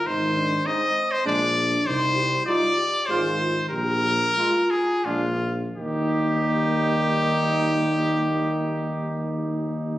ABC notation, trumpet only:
X:1
M:3/4
L:1/16
Q:1/4=89
K:Eb
V:1 name="Trumpet"
c4 e3 c d4 | c4 d4 c4 | B6 A2 F4 | G12- |
G12 |]